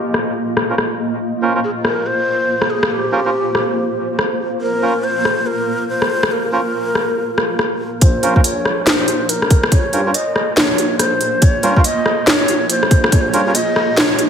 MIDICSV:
0, 0, Header, 1, 6, 480
1, 0, Start_track
1, 0, Tempo, 425532
1, 1364, Time_signature, 4, 2, 24, 8
1, 16125, End_track
2, 0, Start_track
2, 0, Title_t, "Ney"
2, 0, Program_c, 0, 77
2, 0, Note_on_c, 0, 67, 83
2, 165, Note_off_c, 0, 67, 0
2, 1851, Note_on_c, 0, 68, 87
2, 1919, Note_off_c, 0, 68, 0
2, 2088, Note_on_c, 0, 70, 91
2, 2330, Note_on_c, 0, 72, 106
2, 2347, Note_off_c, 0, 70, 0
2, 3045, Note_on_c, 0, 68, 86
2, 3062, Note_off_c, 0, 72, 0
2, 3283, Note_on_c, 0, 67, 93
2, 3300, Note_off_c, 0, 68, 0
2, 4723, Note_off_c, 0, 67, 0
2, 5204, Note_on_c, 0, 70, 100
2, 5683, Note_on_c, 0, 72, 106
2, 5700, Note_off_c, 0, 70, 0
2, 6163, Note_on_c, 0, 70, 103
2, 6180, Note_off_c, 0, 72, 0
2, 6637, Note_off_c, 0, 70, 0
2, 6643, Note_on_c, 0, 72, 101
2, 7124, Note_on_c, 0, 70, 97
2, 7141, Note_off_c, 0, 72, 0
2, 8564, Note_off_c, 0, 70, 0
2, 9044, Note_on_c, 0, 72, 101
2, 9526, Note_on_c, 0, 73, 102
2, 9543, Note_off_c, 0, 72, 0
2, 10004, Note_on_c, 0, 72, 103
2, 10021, Note_off_c, 0, 73, 0
2, 10485, Note_on_c, 0, 70, 93
2, 10502, Note_off_c, 0, 72, 0
2, 10957, Note_off_c, 0, 70, 0
2, 10964, Note_on_c, 0, 73, 106
2, 11443, Note_on_c, 0, 75, 110
2, 11460, Note_off_c, 0, 73, 0
2, 11923, Note_on_c, 0, 73, 106
2, 11940, Note_off_c, 0, 75, 0
2, 12397, Note_off_c, 0, 73, 0
2, 12404, Note_on_c, 0, 72, 97
2, 12883, Note_on_c, 0, 73, 104
2, 12900, Note_off_c, 0, 72, 0
2, 13304, Note_on_c, 0, 77, 75
2, 13321, Note_off_c, 0, 73, 0
2, 13366, Note_on_c, 0, 75, 107
2, 13383, Note_off_c, 0, 77, 0
2, 13844, Note_on_c, 0, 73, 102
2, 13861, Note_off_c, 0, 75, 0
2, 14321, Note_off_c, 0, 73, 0
2, 14327, Note_on_c, 0, 72, 101
2, 14807, Note_on_c, 0, 73, 101
2, 14824, Note_off_c, 0, 72, 0
2, 14904, Note_on_c, 0, 72, 84
2, 14921, Note_off_c, 0, 73, 0
2, 14984, Note_on_c, 0, 73, 101
2, 15001, Note_off_c, 0, 72, 0
2, 15282, Note_on_c, 0, 75, 106
2, 15299, Note_off_c, 0, 73, 0
2, 15768, Note_on_c, 0, 73, 103
2, 15785, Note_off_c, 0, 75, 0
2, 16029, Note_off_c, 0, 73, 0
2, 16125, End_track
3, 0, Start_track
3, 0, Title_t, "Ambient pad"
3, 0, Program_c, 1, 92
3, 0, Note_on_c, 1, 58, 74
3, 0, Note_on_c, 1, 65, 68
3, 0, Note_on_c, 1, 75, 84
3, 1355, Note_off_c, 1, 75, 0
3, 1359, Note_on_c, 1, 72, 82
3, 5192, Note_off_c, 1, 72, 0
3, 5203, Note_on_c, 1, 70, 81
3, 8997, Note_off_c, 1, 65, 0
3, 8998, Note_off_c, 1, 58, 0
3, 9032, Note_off_c, 1, 70, 0
3, 9045, Note_on_c, 1, 58, 75
3, 9045, Note_on_c, 1, 70, 83
3, 9046, Note_on_c, 1, 65, 69
3, 12875, Note_off_c, 1, 70, 0
3, 12881, Note_on_c, 1, 68, 85
3, 16125, Note_off_c, 1, 58, 0
3, 16125, Note_off_c, 1, 65, 0
3, 16125, Note_off_c, 1, 68, 0
3, 16125, End_track
4, 0, Start_track
4, 0, Title_t, "Melodica"
4, 0, Program_c, 2, 22
4, 788, Note_on_c, 2, 65, 63
4, 788, Note_on_c, 2, 70, 65
4, 788, Note_on_c, 2, 72, 75
4, 789, Note_on_c, 2, 61, 71
4, 845, Note_off_c, 2, 65, 0
4, 846, Note_off_c, 2, 61, 0
4, 846, Note_off_c, 2, 70, 0
4, 846, Note_off_c, 2, 72, 0
4, 1601, Note_on_c, 2, 65, 84
4, 1601, Note_on_c, 2, 70, 82
4, 1601, Note_on_c, 2, 72, 98
4, 1602, Note_on_c, 2, 61, 89
4, 1728, Note_off_c, 2, 61, 0
4, 1728, Note_off_c, 2, 65, 0
4, 1728, Note_off_c, 2, 70, 0
4, 1728, Note_off_c, 2, 72, 0
4, 1749, Note_on_c, 2, 65, 87
4, 1750, Note_on_c, 2, 61, 94
4, 1750, Note_on_c, 2, 70, 84
4, 1750, Note_on_c, 2, 72, 100
4, 1806, Note_off_c, 2, 61, 0
4, 1806, Note_off_c, 2, 65, 0
4, 1806, Note_off_c, 2, 70, 0
4, 1806, Note_off_c, 2, 72, 0
4, 3520, Note_on_c, 2, 61, 87
4, 3520, Note_on_c, 2, 65, 79
4, 3520, Note_on_c, 2, 70, 76
4, 3521, Note_on_c, 2, 72, 97
4, 3612, Note_off_c, 2, 61, 0
4, 3612, Note_off_c, 2, 65, 0
4, 3612, Note_off_c, 2, 70, 0
4, 3612, Note_off_c, 2, 72, 0
4, 3670, Note_on_c, 2, 61, 86
4, 3671, Note_on_c, 2, 65, 77
4, 3671, Note_on_c, 2, 70, 75
4, 3671, Note_on_c, 2, 72, 94
4, 3727, Note_off_c, 2, 61, 0
4, 3727, Note_off_c, 2, 65, 0
4, 3727, Note_off_c, 2, 70, 0
4, 3727, Note_off_c, 2, 72, 0
4, 5440, Note_on_c, 2, 61, 92
4, 5440, Note_on_c, 2, 65, 81
4, 5440, Note_on_c, 2, 70, 82
4, 5441, Note_on_c, 2, 72, 102
4, 5567, Note_off_c, 2, 61, 0
4, 5568, Note_off_c, 2, 65, 0
4, 5568, Note_off_c, 2, 70, 0
4, 5568, Note_off_c, 2, 72, 0
4, 7360, Note_on_c, 2, 61, 86
4, 7360, Note_on_c, 2, 70, 80
4, 7360, Note_on_c, 2, 72, 96
4, 7361, Note_on_c, 2, 65, 79
4, 7451, Note_off_c, 2, 61, 0
4, 7451, Note_off_c, 2, 70, 0
4, 7452, Note_off_c, 2, 65, 0
4, 7452, Note_off_c, 2, 72, 0
4, 9280, Note_on_c, 2, 61, 93
4, 9280, Note_on_c, 2, 65, 86
4, 9281, Note_on_c, 2, 70, 84
4, 9281, Note_on_c, 2, 72, 102
4, 9407, Note_off_c, 2, 61, 0
4, 9407, Note_off_c, 2, 65, 0
4, 9408, Note_off_c, 2, 70, 0
4, 9408, Note_off_c, 2, 72, 0
4, 9426, Note_on_c, 2, 72, 101
4, 9427, Note_on_c, 2, 61, 93
4, 9427, Note_on_c, 2, 65, 87
4, 9427, Note_on_c, 2, 70, 88
4, 9485, Note_off_c, 2, 61, 0
4, 9485, Note_off_c, 2, 65, 0
4, 9485, Note_off_c, 2, 70, 0
4, 9485, Note_off_c, 2, 72, 0
4, 11199, Note_on_c, 2, 61, 89
4, 11199, Note_on_c, 2, 65, 83
4, 11199, Note_on_c, 2, 70, 80
4, 11199, Note_on_c, 2, 72, 97
4, 11291, Note_off_c, 2, 61, 0
4, 11291, Note_off_c, 2, 65, 0
4, 11291, Note_off_c, 2, 70, 0
4, 11291, Note_off_c, 2, 72, 0
4, 11348, Note_on_c, 2, 61, 88
4, 11348, Note_on_c, 2, 65, 79
4, 11348, Note_on_c, 2, 70, 82
4, 11348, Note_on_c, 2, 72, 97
4, 11405, Note_off_c, 2, 70, 0
4, 11406, Note_off_c, 2, 61, 0
4, 11406, Note_off_c, 2, 65, 0
4, 11406, Note_off_c, 2, 72, 0
4, 13119, Note_on_c, 2, 61, 93
4, 13119, Note_on_c, 2, 65, 85
4, 13119, Note_on_c, 2, 70, 87
4, 13120, Note_on_c, 2, 72, 105
4, 13247, Note_off_c, 2, 61, 0
4, 13247, Note_off_c, 2, 65, 0
4, 13247, Note_off_c, 2, 70, 0
4, 13247, Note_off_c, 2, 72, 0
4, 13267, Note_on_c, 2, 70, 88
4, 13267, Note_on_c, 2, 72, 107
4, 13268, Note_on_c, 2, 61, 95
4, 13268, Note_on_c, 2, 65, 86
4, 13325, Note_off_c, 2, 61, 0
4, 13325, Note_off_c, 2, 70, 0
4, 13325, Note_off_c, 2, 72, 0
4, 13326, Note_off_c, 2, 65, 0
4, 15042, Note_on_c, 2, 65, 83
4, 15042, Note_on_c, 2, 70, 81
4, 15042, Note_on_c, 2, 72, 99
4, 15043, Note_on_c, 2, 61, 88
4, 15132, Note_off_c, 2, 65, 0
4, 15132, Note_off_c, 2, 70, 0
4, 15133, Note_off_c, 2, 61, 0
4, 15133, Note_off_c, 2, 72, 0
4, 15189, Note_on_c, 2, 61, 89
4, 15190, Note_on_c, 2, 65, 81
4, 15190, Note_on_c, 2, 70, 81
4, 15190, Note_on_c, 2, 72, 98
4, 15246, Note_off_c, 2, 61, 0
4, 15246, Note_off_c, 2, 70, 0
4, 15246, Note_off_c, 2, 72, 0
4, 15247, Note_off_c, 2, 65, 0
4, 16125, End_track
5, 0, Start_track
5, 0, Title_t, "Detuned saw bass"
5, 0, Program_c, 3, 39
5, 9044, Note_on_c, 3, 34, 96
5, 11092, Note_off_c, 3, 34, 0
5, 11201, Note_on_c, 3, 43, 100
5, 11428, Note_off_c, 3, 43, 0
5, 11921, Note_on_c, 3, 34, 79
5, 13110, Note_off_c, 3, 34, 0
5, 13122, Note_on_c, 3, 43, 99
5, 13348, Note_off_c, 3, 43, 0
5, 14083, Note_on_c, 3, 34, 86
5, 14551, Note_off_c, 3, 34, 0
5, 14563, Note_on_c, 3, 34, 91
5, 15032, Note_off_c, 3, 34, 0
5, 15042, Note_on_c, 3, 43, 98
5, 15268, Note_off_c, 3, 43, 0
5, 16125, End_track
6, 0, Start_track
6, 0, Title_t, "Drums"
6, 159, Note_on_c, 9, 37, 47
6, 272, Note_off_c, 9, 37, 0
6, 641, Note_on_c, 9, 37, 57
6, 753, Note_off_c, 9, 37, 0
6, 883, Note_on_c, 9, 37, 51
6, 996, Note_off_c, 9, 37, 0
6, 2082, Note_on_c, 9, 37, 48
6, 2195, Note_off_c, 9, 37, 0
6, 2951, Note_on_c, 9, 37, 51
6, 3064, Note_off_c, 9, 37, 0
6, 3191, Note_on_c, 9, 37, 77
6, 3304, Note_off_c, 9, 37, 0
6, 4003, Note_on_c, 9, 37, 50
6, 4115, Note_off_c, 9, 37, 0
6, 4723, Note_on_c, 9, 37, 53
6, 4836, Note_off_c, 9, 37, 0
6, 5924, Note_on_c, 9, 37, 49
6, 6037, Note_off_c, 9, 37, 0
6, 6789, Note_on_c, 9, 37, 51
6, 6902, Note_off_c, 9, 37, 0
6, 7030, Note_on_c, 9, 37, 72
6, 7142, Note_off_c, 9, 37, 0
6, 7843, Note_on_c, 9, 37, 47
6, 7956, Note_off_c, 9, 37, 0
6, 8322, Note_on_c, 9, 37, 55
6, 8435, Note_off_c, 9, 37, 0
6, 8562, Note_on_c, 9, 37, 49
6, 8675, Note_off_c, 9, 37, 0
6, 9040, Note_on_c, 9, 42, 76
6, 9043, Note_on_c, 9, 36, 108
6, 9153, Note_off_c, 9, 42, 0
6, 9156, Note_off_c, 9, 36, 0
6, 9283, Note_on_c, 9, 42, 51
6, 9396, Note_off_c, 9, 42, 0
6, 9430, Note_on_c, 9, 36, 58
6, 9523, Note_on_c, 9, 42, 82
6, 9543, Note_off_c, 9, 36, 0
6, 9635, Note_off_c, 9, 42, 0
6, 9762, Note_on_c, 9, 37, 48
6, 9875, Note_off_c, 9, 37, 0
6, 10002, Note_on_c, 9, 38, 111
6, 10002, Note_on_c, 9, 42, 77
6, 10114, Note_off_c, 9, 38, 0
6, 10114, Note_off_c, 9, 42, 0
6, 10240, Note_on_c, 9, 42, 53
6, 10353, Note_off_c, 9, 42, 0
6, 10480, Note_on_c, 9, 42, 81
6, 10593, Note_off_c, 9, 42, 0
6, 10629, Note_on_c, 9, 37, 48
6, 10721, Note_on_c, 9, 42, 52
6, 10723, Note_on_c, 9, 36, 102
6, 10742, Note_off_c, 9, 37, 0
6, 10834, Note_off_c, 9, 42, 0
6, 10836, Note_off_c, 9, 36, 0
6, 10868, Note_on_c, 9, 37, 72
6, 10961, Note_on_c, 9, 42, 76
6, 10962, Note_on_c, 9, 36, 120
6, 10981, Note_off_c, 9, 37, 0
6, 11074, Note_off_c, 9, 42, 0
6, 11075, Note_off_c, 9, 36, 0
6, 11201, Note_on_c, 9, 42, 49
6, 11313, Note_off_c, 9, 42, 0
6, 11442, Note_on_c, 9, 42, 78
6, 11555, Note_off_c, 9, 42, 0
6, 11682, Note_on_c, 9, 37, 47
6, 11795, Note_off_c, 9, 37, 0
6, 11923, Note_on_c, 9, 38, 119
6, 11923, Note_on_c, 9, 42, 74
6, 12036, Note_off_c, 9, 38, 0
6, 12036, Note_off_c, 9, 42, 0
6, 12163, Note_on_c, 9, 42, 52
6, 12276, Note_off_c, 9, 42, 0
6, 12402, Note_on_c, 9, 37, 50
6, 12402, Note_on_c, 9, 42, 81
6, 12514, Note_off_c, 9, 37, 0
6, 12514, Note_off_c, 9, 42, 0
6, 12640, Note_on_c, 9, 42, 49
6, 12753, Note_off_c, 9, 42, 0
6, 12880, Note_on_c, 9, 42, 72
6, 12883, Note_on_c, 9, 36, 114
6, 12993, Note_off_c, 9, 42, 0
6, 12996, Note_off_c, 9, 36, 0
6, 13120, Note_on_c, 9, 42, 49
6, 13233, Note_off_c, 9, 42, 0
6, 13271, Note_on_c, 9, 36, 62
6, 13359, Note_on_c, 9, 42, 76
6, 13384, Note_off_c, 9, 36, 0
6, 13472, Note_off_c, 9, 42, 0
6, 13600, Note_on_c, 9, 37, 49
6, 13713, Note_off_c, 9, 37, 0
6, 13841, Note_on_c, 9, 38, 118
6, 13841, Note_on_c, 9, 42, 73
6, 13954, Note_off_c, 9, 38, 0
6, 13954, Note_off_c, 9, 42, 0
6, 14081, Note_on_c, 9, 42, 48
6, 14193, Note_off_c, 9, 42, 0
6, 14320, Note_on_c, 9, 42, 77
6, 14433, Note_off_c, 9, 42, 0
6, 14470, Note_on_c, 9, 37, 50
6, 14562, Note_on_c, 9, 42, 48
6, 14563, Note_on_c, 9, 36, 107
6, 14583, Note_off_c, 9, 37, 0
6, 14674, Note_off_c, 9, 42, 0
6, 14676, Note_off_c, 9, 36, 0
6, 14709, Note_on_c, 9, 37, 72
6, 14802, Note_on_c, 9, 42, 72
6, 14803, Note_on_c, 9, 36, 118
6, 14822, Note_off_c, 9, 37, 0
6, 14915, Note_off_c, 9, 42, 0
6, 14916, Note_off_c, 9, 36, 0
6, 15042, Note_on_c, 9, 42, 46
6, 15155, Note_off_c, 9, 42, 0
6, 15282, Note_on_c, 9, 42, 75
6, 15395, Note_off_c, 9, 42, 0
6, 15523, Note_on_c, 9, 37, 51
6, 15636, Note_off_c, 9, 37, 0
6, 15762, Note_on_c, 9, 38, 118
6, 15762, Note_on_c, 9, 42, 71
6, 15875, Note_off_c, 9, 38, 0
6, 15875, Note_off_c, 9, 42, 0
6, 16002, Note_on_c, 9, 42, 48
6, 16114, Note_off_c, 9, 42, 0
6, 16125, End_track
0, 0, End_of_file